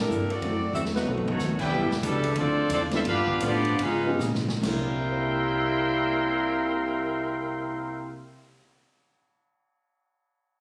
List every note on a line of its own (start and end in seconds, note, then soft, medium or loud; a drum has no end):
0.00 0.32 G3 medium
0.00 0.32 D4 medium
0.00 0.10 E4 medium
0.00 0.32 E4 medium
0.00 0.10 A4 medium
0.00 0.31 A#4 medium
0.10 0.41 G2 medium
0.10 0.32 C3 medium
0.10 0.33 A#3 medium
0.10 0.33 E4 medium
0.10 0.33 A4 medium
0.10 hi-hat pedal medium
0.30 0.73 C4 medium
0.30 0.73 F#4 medium
0.30 0.73 A4 medium
0.30 0.75 D5 medium
0.30 ride soft
0.42 0.73 F#2 medium
0.42 0.64 F#2 medium
0.42 0.65 E3 soft
0.42 0.61 F#3 medium
0.42 0.61 A3 medium
0.42 0.65 A3 medium
0.42 0.61 C4 medium
0.42 0.62 E4 medium
0.42 0.62 A4 medium
0.42 ride medium
0.46 0.66 C4 medium
0.73 1.05 E2 loud
0.73 0.96 F#2 medium
0.73 0.96 E3 medium
0.73 0.96 A3 medium
0.73 0.84 C4 medium
0.73 0.97 C4 medium
0.73 0.84 F#4 medium
0.73 0.84 A4 medium
0.73 0.84 E5 medium
0.73 hi-hat pedal medium
0.85 snare medium
0.93 1.54 D#3 medium
0.93 1.25 F#3 medium
0.93 1.56 A3 medium
0.93 1.54 B3 medium
0.93 1.55 D#4 medium
0.93 1.56 F#4 medium
0.93 1.56 B4 medium
0.93 snare medium
1.06 1.37 B1 medium
1.06 1.28 B2 soft
1.06 1.29 D#3 soft
1.06 1.25 F#3 medium
1.06 1.29 A3 soft
1.06 1.25 B3 medium
1.06 1.25 C4 medium
1.06 1.26 D#4 medium
1.06 1.26 A4 medium
1.06 floor tom medium
1.10 1.30 C4 soft
1.18 floor tom medium
1.26 1.56 F#3 medium
1.26 1.56 A3 medium
1.26 1.57 A3 medium
1.26 1.56 C#4 medium
1.26 1.58 D#4 medium
1.26 1.58 F#4 medium
1.26 1.58 C#5 medium
1.26 floor tom loud
1.38 1.69 D#2 medium
1.38 1.60 B2 medium
1.38 1.61 D#3 medium
1.38 1.61 A3 medium
1.38 1.61 C4 medium
1.38 snare medium
1.38 hi-hat pedal medium
1.59 1.89 D3 medium
1.59 1.89 G3 medium
1.59 1.90 G3 medium
1.59 1.89 B3 medium
1.59 1.90 D4 medium
1.59 2.01 E4 medium
1.59 1.90 E4 medium
1.59 2.01 B4 medium
1.59 1.90 B4 medium
1.59 2.01 D5 medium
1.59 2.01 G5 medium
1.59 kick medium
1.59 crash medium
1.70 1.81 B1 medium
1.70 1.92 E3 medium
1.70 1.89 G3 medium
1.70 1.93 B3 medium
1.70 1.90 B3 medium
1.70 1.90 D4 medium
1.70 1.93 D4 medium
1.70 1.90 E4 medium
1.70 1.93 G4 medium
1.70 1.90 B4 medium
1.81 1.92 G1 medium
1.91 2.02 E1 medium
1.91 snare medium
2.02 2.35 C#2 loud
2.02 2.34 B2 medium
2.02 2.24 E3 medium
2.02 2.35 G3 medium
2.02 2.34 A3 medium
2.02 2.25 B3 medium
2.02 2.25 D4 medium
2.02 2.34 D4 medium
2.02 2.35 D4 medium
2.02 2.35 E4 medium
2.02 2.26 G4 medium
2.02 2.35 A4 medium
2.02 hi-hat pedal medium
2.02 ride medium
2.23 ride medium
2.35 2.69 D2 medium
2.35 2.59 D3 medium
2.35 2.59 F3 soft
2.35 2.71 F3 medium
2.35 2.70 A3 medium
2.35 2.70 C4 medium
2.35 2.60 C4 medium
2.35 2.71 D4 medium
2.35 2.70 F4 medium
2.35 2.70 A4 medium
2.35 2.71 D5 loud
2.35 ride medium
2.40 2.60 E4 medium
2.69 3.03 E2 medium
2.69 2.93 D3 medium
2.69 2.81 F3 medium
2.69 2.94 F3 medium
2.69 2.81 A3 loud
2.69 2.81 C4 medium
2.69 2.94 C4 medium
2.69 2.81 D4 medium
2.69 2.94 E4 medium
2.69 2.82 F4 medium
2.69 2.81 A4 medium
2.69 2.81 D5 loud
2.69 hi-hat pedal medium
2.69 ride medium
2.91 3.04 G3 medium
2.91 2.99 A3 medium
2.91 3.04 B3 medium
2.91 2.98 C4 medium
2.91 3.00 C4 medium
2.91 3.04 D4 medium
2.91 2.98 E4 medium
2.91 3.04 F4 medium
2.91 3.00 F4 medium
2.91 3.00 A4 medium
2.91 3.05 A4 medium
2.91 3.00 E5 loud
2.91 snare medium
2.91 ride medium
3.05 3.40 G2 medium
3.05 3.29 G2 medium
3.05 3.29 F3 medium
3.05 3.39 B3 medium
3.05 3.30 B3 medium
3.05 3.40 D4 medium
3.05 3.40 D4 loud
3.05 3.30 D4 medium
3.05 3.40 F4 medium
3.05 3.40 G4 loud
3.05 3.40 B4 loud
3.05 3.40 F5 loud
3.05 ride medium
3.27 kick medium
3.40 3.67 G2 medium
3.40 3.78 A2 loud
3.40 3.67 F3 medium
3.40 3.80 F3 medium
3.40 3.63 G3 medium
3.40 3.63 B3 medium
3.40 3.67 B3 medium
3.40 3.81 B3 loud
3.40 3.63 D4 medium
3.40 3.81 D4 loud
3.40 3.68 D4 medium
3.40 3.63 F4 medium
3.40 3.81 G4 medium
3.40 3.64 A4 medium
3.40 3.81 D5 loud
3.40 hi-hat pedal medium
3.40 ride medium
3.45 3.81 B3 medium
3.45 3.81 F4 medium
3.65 ride medium
3.79 4.18 G#2 medium
3.79 4.06 C#3 soft
3.79 4.07 F3 soft
3.79 4.07 B3 medium
3.79 4.19 D#4 medium
3.79 4.19 G#4 medium
3.79 4.19 B4 medium
3.79 ride medium
3.83 4.19 G#3 medium
3.83 4.19 B3 medium
3.83 4.08 D#4 medium
3.83 4.19 F4 medium
3.83 4.19 F5 loud
4.06 4.19 F3 medium
4.06 4.19 B3 medium
4.06 4.20 C#4 medium
4.06 4.20 D#4 medium
4.06 4.20 G4 medium
4.19 4.62 A#2 loud
4.19 4.49 C#3 medium
4.19 4.50 F3 medium
4.19 4.50 B3 medium
4.19 4.50 D#4 medium
4.19 snare medium
4.19 hi-hat pedal medium
4.35 snare medium
4.49 snare medium
4.58 8.13 C2 medium
4.58 8.13 C3 medium
4.63 8.18 C3 medium
4.63 8.16 C3 loud
4.63 8.19 G3 medium
4.63 8.16 G3 loud
4.63 8.19 A#3 medium
4.63 8.16 A#3 loud
4.63 8.21 A#3 medium
4.63 8.20 D4 medium
4.63 8.16 E4 loud
4.63 8.20 E4 medium
4.63 8.15 A#4 medium
4.63 8.21 A#4 medium
4.63 8.15 E5 medium
4.63 8.15 G5 medium
4.63 8.15 C6 loud
4.63 snare loud
4.63 crash medium
4.72 8.27 E4 medium
5.11 8.62 C5 soft
5.18 8.69 E5 soft
5.26 8.77 A5 soft
5.36 8.86 C6 soft
5.45 8.96 E6 soft
5.56 9.07 A6 soft
5.68 9.18 C7 soft